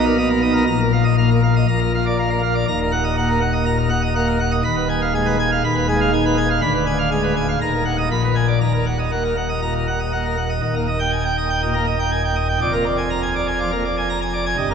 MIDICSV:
0, 0, Header, 1, 2, 480
1, 0, Start_track
1, 0, Key_signature, -6, "minor"
1, 0, Tempo, 498339
1, 650, Time_signature, 4, 2, 24, 8
1, 3533, Tempo, 491400
1, 7373, Tempo, 506329
1, 10252, Key_signature, -3, "major"
1, 10253, Tempo, 493421
1, 14245, End_track
2, 0, Start_track
2, 0, Title_t, "Pipe organ"
2, 0, Program_c, 0, 19
2, 0, Note_on_c, 0, 35, 95
2, 0, Note_on_c, 0, 47, 81
2, 0, Note_on_c, 0, 63, 72
2, 53, Note_on_c, 0, 70, 79
2, 143, Note_off_c, 0, 63, 0
2, 159, Note_off_c, 0, 70, 0
2, 170, Note_on_c, 0, 58, 67
2, 171, Note_on_c, 0, 75, 76
2, 278, Note_off_c, 0, 75, 0
2, 288, Note_on_c, 0, 70, 62
2, 384, Note_off_c, 0, 58, 0
2, 396, Note_off_c, 0, 70, 0
2, 405, Note_on_c, 0, 63, 55
2, 405, Note_on_c, 0, 75, 71
2, 514, Note_off_c, 0, 75, 0
2, 517, Note_on_c, 0, 70, 69
2, 611, Note_off_c, 0, 63, 0
2, 622, Note_off_c, 0, 35, 0
2, 623, Note_off_c, 0, 47, 0
2, 625, Note_off_c, 0, 70, 0
2, 647, Note_on_c, 0, 46, 82
2, 648, Note_on_c, 0, 34, 74
2, 649, Note_on_c, 0, 82, 101
2, 757, Note_off_c, 0, 82, 0
2, 772, Note_on_c, 0, 70, 64
2, 879, Note_off_c, 0, 70, 0
2, 890, Note_on_c, 0, 77, 69
2, 998, Note_off_c, 0, 77, 0
2, 1005, Note_on_c, 0, 75, 63
2, 1116, Note_off_c, 0, 75, 0
2, 1134, Note_on_c, 0, 58, 59
2, 1136, Note_on_c, 0, 77, 60
2, 1243, Note_off_c, 0, 77, 0
2, 1261, Note_on_c, 0, 70, 62
2, 1349, Note_off_c, 0, 58, 0
2, 1366, Note_off_c, 0, 70, 0
2, 1379, Note_on_c, 0, 77, 68
2, 1485, Note_off_c, 0, 77, 0
2, 1507, Note_on_c, 0, 75, 58
2, 1586, Note_off_c, 0, 34, 0
2, 1586, Note_off_c, 0, 46, 0
2, 1605, Note_off_c, 0, 75, 0
2, 1621, Note_on_c, 0, 46, 70
2, 1621, Note_on_c, 0, 82, 86
2, 1624, Note_on_c, 0, 34, 67
2, 1727, Note_off_c, 0, 82, 0
2, 1745, Note_on_c, 0, 70, 64
2, 1849, Note_off_c, 0, 70, 0
2, 1874, Note_on_c, 0, 77, 66
2, 1974, Note_off_c, 0, 77, 0
2, 1986, Note_on_c, 0, 74, 64
2, 2089, Note_off_c, 0, 74, 0
2, 2107, Note_on_c, 0, 77, 67
2, 2108, Note_on_c, 0, 58, 59
2, 2210, Note_off_c, 0, 77, 0
2, 2217, Note_on_c, 0, 70, 52
2, 2318, Note_off_c, 0, 58, 0
2, 2324, Note_off_c, 0, 70, 0
2, 2338, Note_on_c, 0, 77, 54
2, 2445, Note_off_c, 0, 77, 0
2, 2454, Note_on_c, 0, 74, 64
2, 2551, Note_off_c, 0, 46, 0
2, 2552, Note_off_c, 0, 34, 0
2, 2557, Note_off_c, 0, 74, 0
2, 2578, Note_on_c, 0, 27, 69
2, 2578, Note_on_c, 0, 39, 77
2, 2583, Note_on_c, 0, 82, 84
2, 2687, Note_off_c, 0, 82, 0
2, 2705, Note_on_c, 0, 70, 59
2, 2809, Note_off_c, 0, 70, 0
2, 2813, Note_on_c, 0, 78, 60
2, 2922, Note_off_c, 0, 78, 0
2, 2928, Note_on_c, 0, 75, 63
2, 3038, Note_off_c, 0, 75, 0
2, 3052, Note_on_c, 0, 78, 66
2, 3053, Note_on_c, 0, 58, 62
2, 3160, Note_off_c, 0, 78, 0
2, 3168, Note_on_c, 0, 70, 65
2, 3267, Note_off_c, 0, 58, 0
2, 3277, Note_off_c, 0, 70, 0
2, 3282, Note_on_c, 0, 78, 73
2, 3394, Note_off_c, 0, 78, 0
2, 3398, Note_on_c, 0, 75, 67
2, 3511, Note_off_c, 0, 75, 0
2, 3521, Note_on_c, 0, 46, 57
2, 3522, Note_on_c, 0, 82, 73
2, 3634, Note_off_c, 0, 82, 0
2, 3640, Note_on_c, 0, 70, 66
2, 3741, Note_off_c, 0, 46, 0
2, 3753, Note_off_c, 0, 70, 0
2, 3757, Note_on_c, 0, 78, 72
2, 3872, Note_off_c, 0, 78, 0
2, 3879, Note_on_c, 0, 75, 73
2, 3993, Note_off_c, 0, 75, 0
2, 4005, Note_on_c, 0, 58, 65
2, 4007, Note_on_c, 0, 78, 72
2, 4118, Note_off_c, 0, 78, 0
2, 4126, Note_on_c, 0, 70, 63
2, 4224, Note_off_c, 0, 58, 0
2, 4237, Note_off_c, 0, 70, 0
2, 4248, Note_on_c, 0, 78, 72
2, 4358, Note_off_c, 0, 78, 0
2, 4363, Note_on_c, 0, 75, 77
2, 4457, Note_off_c, 0, 27, 0
2, 4457, Note_off_c, 0, 39, 0
2, 4470, Note_off_c, 0, 75, 0
2, 4484, Note_on_c, 0, 27, 82
2, 4485, Note_on_c, 0, 39, 80
2, 4485, Note_on_c, 0, 83, 103
2, 4597, Note_off_c, 0, 83, 0
2, 4606, Note_on_c, 0, 71, 68
2, 4717, Note_off_c, 0, 71, 0
2, 4729, Note_on_c, 0, 80, 73
2, 4839, Note_off_c, 0, 80, 0
2, 4850, Note_on_c, 0, 77, 68
2, 4960, Note_off_c, 0, 77, 0
2, 4975, Note_on_c, 0, 56, 69
2, 4976, Note_on_c, 0, 80, 79
2, 5084, Note_off_c, 0, 80, 0
2, 5088, Note_on_c, 0, 71, 74
2, 5190, Note_off_c, 0, 56, 0
2, 5199, Note_off_c, 0, 71, 0
2, 5214, Note_on_c, 0, 80, 83
2, 5323, Note_off_c, 0, 80, 0
2, 5338, Note_on_c, 0, 77, 72
2, 5438, Note_off_c, 0, 27, 0
2, 5438, Note_off_c, 0, 39, 0
2, 5445, Note_off_c, 0, 77, 0
2, 5457, Note_on_c, 0, 27, 87
2, 5457, Note_on_c, 0, 39, 82
2, 5460, Note_on_c, 0, 83, 84
2, 5566, Note_off_c, 0, 83, 0
2, 5572, Note_on_c, 0, 71, 74
2, 5681, Note_off_c, 0, 71, 0
2, 5692, Note_on_c, 0, 56, 81
2, 5699, Note_on_c, 0, 80, 77
2, 5806, Note_off_c, 0, 80, 0
2, 5815, Note_on_c, 0, 77, 85
2, 5909, Note_off_c, 0, 56, 0
2, 5924, Note_off_c, 0, 77, 0
2, 5936, Note_on_c, 0, 51, 75
2, 5938, Note_on_c, 0, 80, 91
2, 6045, Note_off_c, 0, 80, 0
2, 6061, Note_on_c, 0, 71, 70
2, 6151, Note_off_c, 0, 51, 0
2, 6167, Note_off_c, 0, 71, 0
2, 6174, Note_on_c, 0, 80, 76
2, 6283, Note_off_c, 0, 80, 0
2, 6299, Note_on_c, 0, 77, 83
2, 6388, Note_off_c, 0, 27, 0
2, 6388, Note_off_c, 0, 39, 0
2, 6400, Note_off_c, 0, 77, 0
2, 6409, Note_on_c, 0, 26, 101
2, 6411, Note_on_c, 0, 83, 111
2, 6412, Note_on_c, 0, 38, 95
2, 6519, Note_off_c, 0, 83, 0
2, 6536, Note_on_c, 0, 71, 71
2, 6642, Note_off_c, 0, 71, 0
2, 6656, Note_on_c, 0, 80, 75
2, 6762, Note_off_c, 0, 80, 0
2, 6773, Note_on_c, 0, 77, 77
2, 6880, Note_off_c, 0, 77, 0
2, 6897, Note_on_c, 0, 80, 86
2, 6900, Note_on_c, 0, 56, 75
2, 7002, Note_off_c, 0, 80, 0
2, 7020, Note_on_c, 0, 71, 75
2, 7110, Note_off_c, 0, 56, 0
2, 7124, Note_off_c, 0, 71, 0
2, 7141, Note_on_c, 0, 80, 76
2, 7244, Note_off_c, 0, 80, 0
2, 7263, Note_on_c, 0, 77, 69
2, 7340, Note_off_c, 0, 26, 0
2, 7342, Note_off_c, 0, 38, 0
2, 7361, Note_off_c, 0, 77, 0
2, 7386, Note_on_c, 0, 39, 81
2, 7387, Note_on_c, 0, 27, 82
2, 7389, Note_on_c, 0, 82, 103
2, 7487, Note_off_c, 0, 82, 0
2, 7494, Note_on_c, 0, 70, 71
2, 7598, Note_off_c, 0, 70, 0
2, 7613, Note_on_c, 0, 78, 76
2, 7717, Note_off_c, 0, 78, 0
2, 7736, Note_on_c, 0, 75, 70
2, 7833, Note_off_c, 0, 75, 0
2, 7837, Note_off_c, 0, 39, 0
2, 7838, Note_off_c, 0, 27, 0
2, 7855, Note_on_c, 0, 34, 82
2, 7856, Note_on_c, 0, 46, 77
2, 7860, Note_on_c, 0, 83, 90
2, 7960, Note_off_c, 0, 83, 0
2, 7980, Note_on_c, 0, 71, 58
2, 8080, Note_off_c, 0, 71, 0
2, 8086, Note_on_c, 0, 80, 56
2, 8192, Note_off_c, 0, 80, 0
2, 8210, Note_on_c, 0, 74, 58
2, 8310, Note_off_c, 0, 74, 0
2, 8315, Note_off_c, 0, 34, 0
2, 8316, Note_off_c, 0, 46, 0
2, 8332, Note_on_c, 0, 27, 66
2, 8333, Note_on_c, 0, 82, 77
2, 8335, Note_on_c, 0, 39, 67
2, 8437, Note_off_c, 0, 82, 0
2, 8453, Note_on_c, 0, 70, 55
2, 8557, Note_off_c, 0, 70, 0
2, 8572, Note_on_c, 0, 78, 52
2, 8677, Note_off_c, 0, 78, 0
2, 8692, Note_on_c, 0, 75, 56
2, 8797, Note_off_c, 0, 75, 0
2, 8808, Note_on_c, 0, 58, 52
2, 8810, Note_on_c, 0, 78, 57
2, 8917, Note_off_c, 0, 78, 0
2, 8936, Note_on_c, 0, 70, 46
2, 9023, Note_off_c, 0, 58, 0
2, 9040, Note_off_c, 0, 70, 0
2, 9052, Note_on_c, 0, 78, 62
2, 9159, Note_off_c, 0, 78, 0
2, 9166, Note_on_c, 0, 75, 46
2, 9276, Note_off_c, 0, 75, 0
2, 9286, Note_on_c, 0, 46, 48
2, 9289, Note_on_c, 0, 82, 53
2, 9398, Note_off_c, 0, 82, 0
2, 9407, Note_on_c, 0, 70, 48
2, 9504, Note_off_c, 0, 46, 0
2, 9517, Note_off_c, 0, 70, 0
2, 9532, Note_on_c, 0, 78, 56
2, 9640, Note_off_c, 0, 78, 0
2, 9649, Note_on_c, 0, 75, 52
2, 9758, Note_off_c, 0, 75, 0
2, 9762, Note_on_c, 0, 58, 51
2, 9766, Note_on_c, 0, 78, 56
2, 9876, Note_off_c, 0, 78, 0
2, 9887, Note_on_c, 0, 70, 47
2, 9981, Note_off_c, 0, 58, 0
2, 9997, Note_off_c, 0, 70, 0
2, 10002, Note_on_c, 0, 78, 48
2, 10114, Note_off_c, 0, 78, 0
2, 10120, Note_on_c, 0, 75, 53
2, 10218, Note_off_c, 0, 27, 0
2, 10219, Note_off_c, 0, 39, 0
2, 10227, Note_off_c, 0, 75, 0
2, 10246, Note_on_c, 0, 27, 73
2, 10247, Note_on_c, 0, 75, 67
2, 10248, Note_on_c, 0, 39, 78
2, 10357, Note_off_c, 0, 75, 0
2, 10372, Note_on_c, 0, 58, 58
2, 10373, Note_on_c, 0, 70, 67
2, 10480, Note_off_c, 0, 58, 0
2, 10480, Note_off_c, 0, 70, 0
2, 10492, Note_on_c, 0, 75, 62
2, 10600, Note_off_c, 0, 75, 0
2, 10602, Note_on_c, 0, 79, 62
2, 10715, Note_off_c, 0, 79, 0
2, 10726, Note_on_c, 0, 80, 73
2, 10832, Note_off_c, 0, 80, 0
2, 10845, Note_on_c, 0, 79, 65
2, 10957, Note_off_c, 0, 79, 0
2, 10972, Note_on_c, 0, 75, 72
2, 11081, Note_off_c, 0, 75, 0
2, 11090, Note_on_c, 0, 79, 57
2, 11201, Note_off_c, 0, 79, 0
2, 11217, Note_on_c, 0, 75, 72
2, 11220, Note_on_c, 0, 46, 58
2, 11324, Note_off_c, 0, 75, 0
2, 11326, Note_off_c, 0, 46, 0
2, 11332, Note_on_c, 0, 58, 59
2, 11332, Note_on_c, 0, 70, 67
2, 11441, Note_off_c, 0, 58, 0
2, 11441, Note_off_c, 0, 70, 0
2, 11452, Note_on_c, 0, 75, 66
2, 11562, Note_off_c, 0, 75, 0
2, 11571, Note_on_c, 0, 79, 66
2, 11681, Note_off_c, 0, 79, 0
2, 11688, Note_on_c, 0, 80, 61
2, 11794, Note_off_c, 0, 80, 0
2, 11815, Note_on_c, 0, 79, 61
2, 11923, Note_off_c, 0, 79, 0
2, 11928, Note_on_c, 0, 75, 58
2, 12039, Note_off_c, 0, 75, 0
2, 12056, Note_on_c, 0, 79, 74
2, 12135, Note_off_c, 0, 27, 0
2, 12136, Note_off_c, 0, 39, 0
2, 12158, Note_off_c, 0, 79, 0
2, 12178, Note_on_c, 0, 74, 68
2, 12179, Note_on_c, 0, 29, 81
2, 12179, Note_on_c, 0, 41, 80
2, 12285, Note_off_c, 0, 74, 0
2, 12290, Note_on_c, 0, 70, 63
2, 12292, Note_on_c, 0, 58, 60
2, 12400, Note_off_c, 0, 70, 0
2, 12401, Note_off_c, 0, 58, 0
2, 12415, Note_on_c, 0, 74, 60
2, 12523, Note_off_c, 0, 74, 0
2, 12529, Note_on_c, 0, 80, 67
2, 12640, Note_off_c, 0, 80, 0
2, 12649, Note_on_c, 0, 82, 73
2, 12754, Note_off_c, 0, 82, 0
2, 12769, Note_on_c, 0, 80, 72
2, 12880, Note_off_c, 0, 80, 0
2, 12900, Note_on_c, 0, 74, 71
2, 13005, Note_off_c, 0, 74, 0
2, 13012, Note_on_c, 0, 80, 59
2, 13120, Note_off_c, 0, 80, 0
2, 13131, Note_on_c, 0, 53, 62
2, 13134, Note_on_c, 0, 74, 70
2, 13240, Note_off_c, 0, 53, 0
2, 13241, Note_off_c, 0, 74, 0
2, 13253, Note_on_c, 0, 70, 67
2, 13254, Note_on_c, 0, 58, 60
2, 13361, Note_off_c, 0, 70, 0
2, 13362, Note_off_c, 0, 58, 0
2, 13376, Note_on_c, 0, 74, 69
2, 13483, Note_off_c, 0, 74, 0
2, 13496, Note_on_c, 0, 80, 72
2, 13602, Note_off_c, 0, 80, 0
2, 13617, Note_on_c, 0, 82, 59
2, 13718, Note_off_c, 0, 82, 0
2, 13737, Note_on_c, 0, 80, 63
2, 13842, Note_off_c, 0, 80, 0
2, 13850, Note_on_c, 0, 74, 62
2, 13958, Note_off_c, 0, 74, 0
2, 13971, Note_on_c, 0, 80, 72
2, 14054, Note_off_c, 0, 29, 0
2, 14054, Note_off_c, 0, 41, 0
2, 14073, Note_off_c, 0, 80, 0
2, 14084, Note_on_c, 0, 75, 75
2, 14087, Note_on_c, 0, 31, 74
2, 14089, Note_on_c, 0, 43, 80
2, 14194, Note_off_c, 0, 75, 0
2, 14211, Note_on_c, 0, 70, 68
2, 14212, Note_on_c, 0, 58, 62
2, 14245, Note_off_c, 0, 31, 0
2, 14245, Note_off_c, 0, 43, 0
2, 14245, Note_off_c, 0, 58, 0
2, 14245, Note_off_c, 0, 70, 0
2, 14245, End_track
0, 0, End_of_file